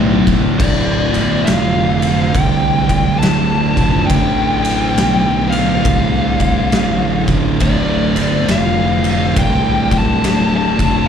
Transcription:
Already playing: fingered electric bass B1, distorted electric guitar D2 A2 D3 A3 F4
0.27 kick, crash
0.59 fingered electric bass D1, distorted electric guitar D2 A2 D3, lead electric guitar D5, kick, crash
1.14 fingered electric bass G1, ride
1.45 fingered electric bass F1, lead electric guitar F5, snare, ride
2.02 ride
2.32 fingered electric bass C2, lead electric guitar G5, kick, ride
2.89 kick, ride
3.19 fingered electric bass D1, lead electric guitar A5, ride
3.23 snare
3.77 fingered electric bass F1, distorted electric guitar D2 A2 D3, kick, ride
4.07 fingered electric bass A1, distorted electric guitar D2, lead electric guitar G5, kick, ride
4.11 distorted electric guitar A2 D3
4.65 ride
4.96 fingered electric bass B1, snare, ride
5.50 lead electric guitar F5, ride
5.85 fingered electric bass C2, kick, ride
6.40 kick, ride
6.72 fingered electric bass A1, snare, ride
7.28 distorted electric guitar D2 A2 D3, kick, ride
7.60 fingered electric bass D1, distorted electric guitar D2 A2 D3, lead electric guitar D5, kick, ride
8.16 fingered electric bass G1, ride
8.48 fingered electric bass F1, lead electric guitar F5, snare, ride
9.04 ride
9.36 fingered electric bass C2, lead electric guitar G5, kick, ride
9.91 kick, ride
9.98 lead electric guitar A5
10.24 fingered electric bass D1, snare, ride
10.57 lead electric guitar A5
10.79 fingered electric bass F1, distorted electric guitar D2 A2 D3, kick, ride

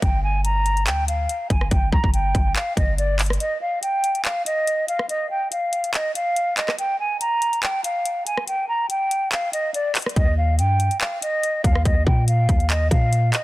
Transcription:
0.02 808-style bass G1, flute G5, kick, closed hi-hat
0.24 flute G#5
0.44 flute A#5, closed hi-hat
0.66 closed hi-hat
0.77 closed hi-hat
0.87 808-style bass D2, flute G5, clap, closed hi-hat
1.08 flute F5, closed hi-hat
1.29 closed hi-hat
1.50 808-style bass G1, flute G#5, kick, closed hi-hat
1.61 cross-stick
1.71 808-style bass G1, flute G5, kick, closed hi-hat
1.92 808-style bass A#1, flute A#5, kick
2.04 808-style bass G1, kick
2.14 flute G5, closed hi-hat
2.35 808-style bass G1, kick, closed hi-hat
2.56 flute F5, clap, closed hi-hat
2.77 808-style bass G1, flute D#5, kick, closed hi-hat
2.98 flute D5, closed hi-hat
3.19 clap, closed hi-hat, open hi-hat
3.26 closed hi-hat
3.30 cross-stick, closed hi-hat
3.40 flute D#5, closed hi-hat
3.61 flute F5
3.82 flute G5, closed hi-hat
4.04 closed hi-hat
4.15 closed hi-hat
4.25 flute F5, clap, closed hi-hat
4.46 flute D#5, closed hi-hat
4.67 closed hi-hat
4.88 flute F5, closed hi-hat
4.99 cross-stick
5.09 flute D#5, closed hi-hat
5.31 flute G5
5.52 flute F5, closed hi-hat
5.73 closed hi-hat
5.84 closed hi-hat
5.94 flute D#5, clap, closed hi-hat
6.15 flute F5, closed hi-hat
6.36 closed hi-hat
6.57 flute D#5, clap, closed hi-hat
6.68 cross-stick, clap
6.79 flute G5, closed hi-hat
7.00 flute G#5
7.20 flute A#5, closed hi-hat
7.42 closed hi-hat
7.53 closed hi-hat
7.63 flute G5, clap, closed hi-hat
7.84 flute F5, closed hi-hat
8.05 closed hi-hat
8.26 flute G#5, closed hi-hat
8.37 cross-stick
8.47 flute G5, closed hi-hat
8.69 flute A#5
8.90 flute G5, closed hi-hat
9.11 closed hi-hat
9.32 flute F5, clap, closed hi-hat
9.53 flute D#5, closed hi-hat
9.74 flute D5, closed hi-hat
9.95 clap, closed hi-hat, open hi-hat
10.02 closed hi-hat
10.06 cross-stick, closed hi-hat
10.16 808-style bass D#2, flute D#5, kick, closed hi-hat
10.38 flute F5
10.59 808-style bass G2, flute G5, closed hi-hat
10.80 closed hi-hat
10.91 closed hi-hat
11.01 flute F5, clap, closed hi-hat
11.22 flute D#5, closed hi-hat
11.43 closed hi-hat
11.64 808-style bass D#2, flute F5, kick, closed hi-hat
11.75 cross-stick
11.85 808-style bass D#2, flute D#5, kick, closed hi-hat
12.07 808-style bass A#2, flute G5, kick
12.28 flute F5, closed hi-hat
12.49 808-style bass D#2, kick, closed hi-hat
12.60 closed hi-hat
12.70 flute D#5, clap, closed hi-hat
12.91 808-style bass A#2, flute F5, kick, closed hi-hat
13.13 closed hi-hat
13.33 flute D#5, clap, closed hi-hat

